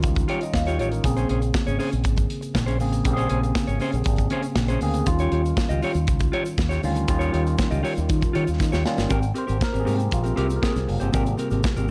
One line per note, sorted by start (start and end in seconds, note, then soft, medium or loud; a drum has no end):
0.00 0.24 C#2 loud
0.00 1.06 D#3 medium
0.00 1.06 G3 medium
0.00 1.06 C#4 medium
0.00 1.06 D#4 medium
0.00 1.06 F4 loud
0.00 muted clean electric guitar stroke soft
0.00 kick loud
0.00 closed hi-hat medium
0.05 shaker medium
0.15 muted clean electric guitar stroke soft
0.15 kick loud
0.15 closed hi-hat soft
0.15 shaker medium
0.28 0.43 F4 medium
0.28 0.41 G4 loud
0.28 0.41 C#5 medium
0.28 0.41 C#5 loud
0.28 closed hi-hat medium
0.41 0.54 D#5 medium
0.41 muted clean electric guitar stroke soft
0.41 closed hi-hat soft
0.41 shaker medium
0.54 0.79 D#2 loud
0.54 0.78 F5 medium
0.54 muted clean electric guitar stroke soft
0.54 kick loud
0.54 snare loud
0.54 shaker medium
0.66 0.78 F4 medium
0.66 0.79 G4 medium
0.66 0.80 C#5 medium
0.66 snare soft
0.66 closed hi-hat soft
0.66 shaker medium
0.79 0.99 A1 medium
0.79 0.90 F4 medium
0.79 0.91 G4 medium
0.79 0.92 C#5 medium
0.79 0.90 C#5 medium
0.79 closed hi-hat medium
0.79 shaker medium
0.91 1.16 A#4 medium
0.91 muted clean electric guitar stroke soft
0.91 closed hi-hat soft
0.91 shaker medium
1.04 1.24 A#1 medium
1.04 1.91 C#3 medium
1.04 1.92 A#3 medium
1.04 1.92 C4 medium
1.04 1.92 G#4 medium
1.04 muted clean electric guitar stroke soft
1.04 kick loud
1.04 closed hi-hat medium
1.04 shaker medium
1.17 1.28 C#4 medium
1.17 1.29 G#4 medium
1.17 1.30 C5 medium
1.17 closed hi-hat soft
1.17 shaker medium
1.29 1.50 A#1 loud
1.29 1.41 C#4 medium
1.29 1.41 G#4 medium
1.29 1.40 C5 medium
1.29 closed hi-hat medium
1.42 muted clean electric guitar stroke soft
1.42 closed hi-hat soft
1.42 shaker soft
1.54 muted clean electric guitar stroke soft
1.54 kick loud
1.54 snare loud
1.54 shaker medium
1.67 1.78 G#1 medium
1.67 1.77 C#4 soft
1.67 1.78 G#4 medium
1.67 1.78 C#5 medium
1.67 closed hi-hat soft
1.67 shaker medium
1.79 1.94 C#4 medium
1.79 1.92 G#4 medium
1.79 1.91 C5 medium
1.79 open hi-hat medium
1.79 shaker soft
1.92 2.05 A#1 medium
1.92 muted clean electric guitar stroke medium
1.92 closed hi-hat soft
1.92 shaker soft
2.04 2.25 G#1 loud
2.04 muted clean electric guitar stroke soft
2.04 kick loud
2.04 closed hi-hat medium
2.04 shaker medium
2.16 muted clean electric guitar stroke soft
2.16 kick loud
2.16 closed hi-hat soft
2.16 shaker medium
2.30 closed hi-hat medium
2.41 muted clean electric guitar stroke soft
2.41 closed hi-hat soft
2.41 shaker medium
2.54 2.81 A#1 medium
2.54 muted clean electric guitar stroke soft
2.54 kick medium
2.54 snare loud
2.54 shaker medium
2.66 2.78 C#4 medium
2.66 2.79 G#4 medium
2.66 2.80 C5 medium
2.66 closed hi-hat soft
2.66 shaker soft
2.79 3.01 A1 loud
2.79 3.02 C#3 medium
2.79 3.02 A#3 medium
2.79 3.03 C4 medium
2.79 3.03 G#4 medium
2.79 muted clean electric guitar stroke soft
2.79 open hi-hat medium
2.79 shaker medium
2.92 muted clean electric guitar stroke soft
2.92 closed hi-hat medium
2.92 shaker medium
3.04 3.26 A#1 loud
3.04 3.93 C#3 medium
3.04 3.93 A#3 medium
3.04 3.93 C4 medium
3.04 3.12 G4 medium
3.04 muted clean electric guitar stroke soft
3.04 kick loud
3.04 closed hi-hat medium
3.04 shaker medium
3.13 3.97 G#4 loud
3.13 3.30 C5 medium
3.13 closed hi-hat soft
3.18 3.28 C#4 medium
3.18 3.29 G#4 medium
3.18 shaker medium
3.29 3.51 A#1 loud
3.29 3.41 C#4 medium
3.29 3.42 G#4 medium
3.29 3.41 C5 medium
3.29 closed hi-hat medium
3.42 muted clean electric guitar stroke soft
3.42 closed hi-hat soft
3.42 shaker soft
3.55 muted clean electric guitar stroke soft
3.55 kick loud
3.55 snare loud
3.55 shaker medium
3.67 3.78 G#1 medium
3.67 3.79 C#4 medium
3.67 3.80 G#4 medium
3.67 3.79 C#5 medium
3.67 closed hi-hat soft
3.67 shaker medium
3.80 3.95 C#4 medium
3.80 3.93 G#4 medium
3.80 3.92 C5 loud
3.80 open hi-hat medium
3.80 shaker medium
3.92 4.04 A#1 medium
3.92 muted clean electric guitar stroke soft
3.92 closed hi-hat soft
3.92 shaker medium
4.04 4.26 G#1 medium
4.04 muted clean electric guitar stroke soft
4.04 kick loud
4.04 closed hi-hat medium
4.04 shaker medium
4.16 muted clean electric guitar stroke soft
4.16 kick medium
4.16 closed hi-hat soft
4.16 shaker medium
4.30 4.46 C#4 medium
4.30 4.44 G#4 loud
4.30 4.43 C5 medium
4.30 closed hi-hat medium
4.42 muted clean electric guitar stroke soft
4.42 closed hi-hat soft
4.42 shaker medium
4.56 4.76 A#1 medium
4.56 muted clean electric guitar stroke soft
4.56 kick loud
4.56 snare loud
4.56 shaker medium
4.68 4.81 C#4 medium
4.68 4.81 G#4 medium
4.68 4.82 C5 medium
4.68 closed hi-hat soft
4.68 shaker medium
4.81 5.02 D2 loud
4.81 5.04 C#3 medium
4.81 5.04 A#3 medium
4.81 5.04 C4 medium
4.81 5.04 G#4 medium
4.81 muted clean electric guitar stroke soft
4.81 open hi-hat medium
4.81 shaker medium
4.94 muted clean electric guitar stroke medium
4.94 closed hi-hat soft
4.94 shaker medium
5.06 5.27 D#2 loud
5.06 5.94 D#3 medium
5.06 5.94 G3 medium
5.06 5.94 C#4 medium
5.06 5.95 F4 loud
5.06 muted clean electric guitar stroke soft
5.06 kick loud
5.06 closed hi-hat medium
5.06 shaker medium
5.19 5.30 F4 medium
5.19 5.32 G4 medium
5.19 5.33 C#5 medium
5.19 closed hi-hat soft
5.19 shaker medium
5.32 5.52 D#2 loud
5.32 5.43 F4 medium
5.32 5.44 G4 medium
5.32 5.43 C#5 medium
5.32 closed hi-hat medium
5.44 muted clean electric guitar stroke soft
5.44 closed hi-hat soft
5.44 shaker medium
5.57 muted clean electric guitar stroke soft
5.57 kick loud
5.57 snare loud
5.57 shaker medium
5.69 5.80 C#2 medium
5.69 5.81 F4 medium
5.69 5.81 G4 medium
5.69 5.81 D#5 medium
5.69 closed hi-hat soft
5.69 shaker medium
5.82 5.97 F4 medium
5.82 5.95 G4 loud
5.82 5.93 C#5 loud
5.82 open hi-hat medium
5.82 shaker soft
5.94 6.08 D#2 medium
5.94 muted clean electric guitar stroke medium
5.94 closed hi-hat soft
5.94 shaker medium
6.07 6.28 C#2 medium
6.07 muted clean electric guitar stroke soft
6.07 kick loud
6.07 closed hi-hat medium
6.07 shaker medium
6.19 muted clean electric guitar stroke soft
6.19 kick loud
6.19 closed hi-hat soft
6.19 shaker medium
6.32 6.47 F4 medium
6.32 6.45 G4 medium
6.32 6.45 C#5 loud
6.32 closed hi-hat medium
6.45 muted clean electric guitar stroke soft
6.45 closed hi-hat soft
6.45 shaker medium
6.58 6.78 D#2 medium
6.58 muted clean electric guitar stroke soft
6.58 kick loud
6.58 snare loud
6.58 shaker medium
6.69 6.82 F4 medium
6.69 6.82 G4 medium
6.69 6.83 C#5 medium
6.69 snare soft
6.69 closed hi-hat soft
6.69 shaker soft
6.83 7.04 D2 medium
6.83 7.05 D#3 medium
6.83 7.05 G3 medium
6.83 7.06 C#4 medium
6.83 7.06 F4 loud
6.83 muted clean electric guitar stroke soft
6.83 open hi-hat medium
6.83 shaker medium
6.95 muted clean electric guitar stroke medium
6.95 closed hi-hat soft
6.95 shaker medium
7.08 7.29 D#2 loud
7.08 7.96 D#3 medium
7.08 7.96 G3 medium
7.08 7.97 C#4 medium
7.08 7.97 F4 medium
7.08 muted clean electric guitar stroke soft
7.08 kick loud
7.08 closed hi-hat medium
7.08 shaker medium
7.19 7.31 F4 medium
7.19 7.32 G4 medium
7.19 7.33 C#5 medium
7.19 closed hi-hat soft
7.19 shaker soft
7.32 7.54 D#2 loud
7.32 7.44 F4 medium
7.32 7.45 G4 medium
7.32 7.44 C#5 medium
7.32 closed hi-hat medium
7.45 muted clean electric guitar stroke soft
7.45 closed hi-hat soft
7.45 shaker medium
7.58 muted clean electric guitar stroke soft
7.58 kick loud
7.58 snare loud
7.58 shaker medium
7.71 7.82 C#2 loud
7.71 7.82 F4 medium
7.71 7.82 G4 medium
7.71 7.83 D#5 medium
7.71 closed hi-hat soft
7.71 shaker medium
7.83 7.98 F4 medium
7.83 7.96 G4 medium
7.83 7.95 C#5 medium
7.83 open hi-hat medium
7.83 shaker medium
7.96 8.08 D#2 loud
7.96 muted clean electric guitar stroke soft
7.96 closed hi-hat soft
7.96 shaker medium
8.08 8.20 D#3 loud
8.08 muted clean electric guitar stroke soft
8.08 kick loud
8.08 closed hi-hat medium
8.08 shaker medium
8.21 muted clean electric guitar stroke soft
8.21 kick medium
8.21 closed hi-hat soft
8.21 shaker medium
8.33 8.45 D#3 medium
8.33 8.49 F4 medium
8.33 8.47 G4 medium
8.33 8.45 C#5 medium
8.33 closed hi-hat medium
8.46 8.58 D#2 medium
8.46 muted clean electric guitar stroke soft
8.46 closed hi-hat soft
8.46 shaker medium
8.59 8.70 D#3 loud
8.59 muted clean electric guitar stroke soft
8.59 kick loud
8.59 snare medium
8.59 shaker medium
8.72 8.83 D#2 medium
8.72 8.84 F4 medium
8.72 8.85 G4 medium
8.72 8.85 C#5 medium
8.72 snare medium
8.72 shaker medium
8.85 9.07 D#3 medium
8.85 9.08 G3 medium
8.85 9.08 C#4 medium
8.85 9.08 F4 medium
8.85 snare medium
8.85 shaker medium
8.97 9.08 G1 medium
8.97 muted clean electric guitar stroke medium
8.97 snare medium
8.97 shaker medium
9.09 9.31 G#1 loud
9.09 9.25 C4 medium
9.09 9.22 G4 medium
9.09 9.21 A#4 medium
9.09 kick loud
9.09 closed hi-hat medium
9.09 shaker medium
9.22 muted clean electric guitar stroke soft
9.22 closed hi-hat soft
9.22 shaker soft
9.34 9.47 C4 medium
9.34 9.46 G4 medium
9.34 9.46 A#4 medium
9.34 9.61 C5 loud
9.34 closed hi-hat medium
9.34 shaker soft
9.47 9.59 G#1 medium
9.47 9.58 C4 soft
9.47 9.59 G4 soft
9.47 9.59 A#4 medium
9.47 closed hi-hat soft
9.47 shaker soft
9.59 muted clean electric guitar stroke soft
9.59 kick loud
9.59 snare loud
9.59 shaker medium
9.63 9.71 A#4 loud
9.72 9.85 G#1 medium
9.72 9.84 C4 medium
9.72 9.85 G4 medium
9.72 9.85 A#4 medium
9.72 closed hi-hat soft
9.72 shaker soft
9.80 9.96 G#4 medium
9.85 10.07 G#2 medium
9.85 10.59 C3 soft
9.85 10.60 G3 soft
9.85 10.60 A#3 medium
9.85 10.00 C4 medium
9.85 9.98 G4 medium
9.85 9.97 A#4 medium
9.85 open hi-hat medium
9.85 shaker medium
9.98 10.14 G4 medium
9.98 muted clean electric guitar stroke medium
9.98 closed hi-hat soft
9.98 shaker medium
10.11 10.33 A#1 medium
10.11 10.39 F4 medium
10.11 muted clean electric guitar stroke soft
10.11 kick loud
10.11 closed hi-hat medium
10.11 shaker medium
10.23 10.35 C4 soft
10.23 10.36 G4 medium
10.23 10.35 A#4 medium
10.23 closed hi-hat soft
10.23 shaker medium
10.36 10.58 C2 loud
10.36 10.51 C4 medium
10.36 10.49 G4 medium
10.36 10.57 G4 medium
10.36 10.48 A#4 medium
10.36 closed hi-hat medium
10.49 muted clean electric guitar stroke medium
10.49 closed hi-hat soft
10.49 shaker medium
10.56 10.63 A#4 medium
10.62 10.77 C4 medium
10.62 10.75 G4 medium
10.62 11.86 G#4 medium
10.62 10.73 A#4 medium
10.62 kick loud
10.62 snare loud
10.62 shaker medium
10.75 10.86 C2 medium
10.75 muted clean electric guitar stroke soft
10.75 snare soft
10.75 closed hi-hat soft
10.75 shaker soft
10.87 10.99 F#1 medium
10.87 11.11 C3 soft
10.87 11.11 G3 soft
10.87 11.11 A#3 medium
10.87 muted clean electric guitar stroke soft
10.87 open hi-hat medium
11.00 11.11 G1 medium
11.00 11.11 C4 medium
11.00 11.12 G4 medium
11.00 11.12 C5 medium
11.00 closed hi-hat soft
11.00 shaker medium
11.12 11.34 G#1 loud
11.12 11.85 C3 medium
11.12 11.86 A#3 medium
11.12 11.27 C4 medium
11.12 11.86 G4 medium
11.12 11.25 G4 medium
11.12 11.24 A#4 medium
11.12 kick loud
11.12 closed hi-hat medium
11.12 shaker medium
11.26 muted clean electric guitar stroke soft
11.26 closed hi-hat soft
11.26 shaker soft
11.38 11.49 C4 medium
11.38 11.50 G4 medium
11.38 11.50 A#4 medium
11.38 closed hi-hat medium
11.38 shaker soft
11.51 11.62 G#1 loud
11.51 11.63 C4 soft
11.51 11.63 G4 medium
11.51 11.63 A#4 medium
11.51 closed hi-hat soft
11.51 shaker soft
11.63 kick loud
11.63 snare loud
11.63 shaker medium
11.77 11.91 G#1 medium
11.77 11.88 C4 medium
11.77 11.89 G4 medium
11.77 11.88 A#4 medium
11.77 closed hi-hat soft
11.77 shaker medium